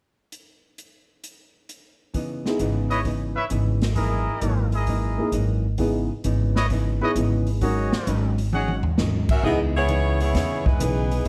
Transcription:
0.32 closed hi-hat
0.78 closed hi-hat
1.24 closed hi-hat
1.69 closed hi-hat
2.14 C#3 E3 B3 D#4, kick, open hi-hat
2.45 B3 D#4 E4 G#4, snare
2.59 G#1 C#3 E3 B3 D#4, closed hi-hat
2.90 E4 B4 C#5 D#5, open hi-hat
3.04 C#3 E3 B3 D#4, kick, open hi-hat
3.36 E4 B4 C#5 E5
3.50 G#1 C#3 E3 B3 D#4, closed hi-hat
3.82 snare, open hi-hat
3.95 F#2 E3 A#3 D#4 E4 G#4 A#4 D#5, kick, open hi-hat
4.41 G#1 F#2 E3 A#3 D#4, closed hi-hat
4.72 E4 G#4 A#4 D#5, open hi-hat
4.87 F#2 E3 A#3 D#4, kick, open hi-hat
5.18 A#3 D#4 E4 G#4
5.32 G#1 F#2 E3 A#3 D#4, closed hi-hat
5.78 C#3 E3 B3 D#4 E4 G#4, kick, open hi-hat
6.24 G#1 C#3 E3 B3 D#4, closed hi-hat
6.56 E4 B4 C#5 D#5, snare
6.70 C#3 E3 B3 D#4, kick, open hi-hat
7.01 B3 D#4 E4 G#4 B4 C#5 D#5
7.15 G#1 C#3 E3 B3 D#4, closed hi-hat
7.47 open hi-hat
7.61 G#2 F#3 C#4 D#4 F#4 G#4 A#4 C#5 D#5, kick, open hi-hat
7.93 snare
8.06 G#1 G#2 F#3 C#4 D#4, closed hi-hat
8.38 open hi-hat
8.52 G#2 F#3 C#4 D#4 F#4 G#4 C#5 F#5, high tom
8.68 high tom
8.83 floor tom
8.98 G#1 G#2 F#3 C#4 D#4, snare
9.29 C#4 F#4 A#4 E5, kick, crash
9.43 C#2 C#3 E3 B3 D#4 E4 G#4 D#5, kick
9.76 B3 E4 G#4 C#5
9.89 C#3 E3 B3 D#4, closed hi-hat
10.20 B3 E4 G#4 C#5, open hi-hat
10.33 E2 C#3 E3 B3 D#4, kick, snare, open hi-hat
10.66 G#3 D#4 E4 B4, kick
10.79 B1 C#3 E3 B3 D#4 G#4, closed hi-hat
11.11 open hi-hat

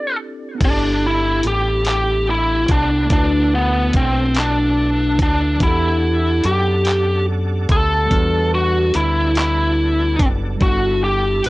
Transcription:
Already playing: C4 D4 E4 G4 A4 D5
0.55 B3 D4
0.61 G1 E4 G4 E5 A5 B5, kick, closed hi-hat, crash
0.65 D4 A4
1.06 E4
1.43 A1 G4, closed hi-hat
1.85 G4, clap, closed hi-hat
2.30 E4
2.68 C2 D4, kick, closed hi-hat
3.05 A3 D4
3.10 D2 D4 E4 F#4 A4 F#5 A5, kick, closed hi-hat
3.17 B4
3.55 B3
3.93 B1 C4, kick, closed hi-hat
4.35 clap, closed hi-hat
4.39 D4
5.19 D2 D4, kick, closed hi-hat
5.56 F#3 B3
5.60 E2 D4 E4 G4 A4 D5 A5, kick, closed hi-hat
5.65 A4 F#5
6.44 F#2 G4, closed hi-hat
6.85 clap, closed hi-hat
7.69 D2 A4, kick, closed hi-hat
8.05 G3 B3
8.11 E2 D4 F#4, kick, closed hi-hat
8.17 B4
8.55 F#4
8.94 D2 E4, closed hi-hat
9.35 E4, clap, closed hi-hat
10.19 F#1, kick, closed hi-hat
10.56 G3 A3 E5
10.60 G1 D4 F#4 B5, kick, closed hi-hat
10.65 B3 E4 A4
11.04 G4
11.44 A1 B4, closed hi-hat

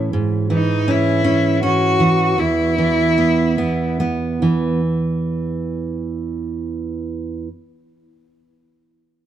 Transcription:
Already playing: A2 E3 E4
0.13 G#2
0.50 E3 D#4
0.88 C#4 E4
1.24 C#4
1.63 C#4 F#4
2.00 E3
2.38 E2 E4
2.78 E3
3.18 B3
3.58 B3
4.00 B3
4.42 E3

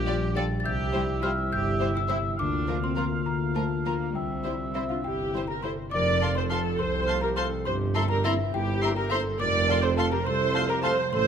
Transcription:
Already playing: A#1 A#2 F3 G3 A#3 D4 F4 G4 A#4 D5 G6
0.07 G3 F4 D5 G5
0.35 G3 F4 A4 D5 G5 A6
0.60 A6
0.65 C2 C3 E4 G4 E5 G6
0.93 G3 E4 C5 G5
1.22 G3 C4 E4 F4 C5 G5 F6
1.51 G1 E4 G4 G6
1.80 G3 E4 G4 C5 G5
1.94 E4 E6
2.08 G3 E4 C5 G5 E6
2.37 D2 D3 A#3 D4 F4 F5 D6
2.67 F3 F4 A#4 A#5
2.82 C4 C6
2.96 F3 A#3 C4 F4 A#4 A#5 C6
3.25 D2 A#3 F4 A#5
3.54 F3 A3 F4 A#4 A5 A#5
3.84 F3 A#3 F4 A#4 A#5
4.13 C2 C3 G3 C4 E5 G5
4.44 G3 E4 C5 C6
4.75 G3 C4 E4 C5 E5 C6
4.89 D4 F4 F5
5.02 G1 E4 G4 G5
5.34 G3 E4 G4 C5 C6
5.48 G4 A#4 A#5
5.62 G3 E4 A4 C5 C6
5.91 F1 F2 A#4 D5 D6
6.21 C3 A3 F4 F5 A5 C6
6.35 A4 C5 C6
6.50 A3 C4 F4 A4 F5 A5 C6
6.79 C2 A4 C5 C6
7.07 A3 F4 F5 A5 C6
7.21 G4 A#4 A#5
7.36 A3 C4 F4 A4 C5 F5 A5 C6
7.65 G1 G2 G4 C5 C6
7.95 G3 A#3 E4 F4 A4 E5 A5 A#5 C6
8.09 G4 A#4 A#5
8.24 A#3 C4 E4 E5 A#5 C6
8.53 G1 G2 E4 G4 A#4 G5
8.82 A#3 E4 E5 A#5 C6
8.96 G4 A#4 A#5
9.10 A#3 C4 E4 A4 C5 E5 A#5 C6
9.39 F1 F2 A#4 D5 D6
9.67 C3 A3 F4 F5 A5 C6
9.83 A4 C5 C6
9.97 A3 C4 F4 A4 F5 A5 C6
10.12 G4 A#4 A#5
10.25 C2 A4 C5 C6
10.54 A3 F4 F5 A5 C6
10.70 G4 A#4 A#5
10.83 A3 C4 F4 A4 C5 F5 A5 C6
11.12 A1 A2 A4 C5 C6

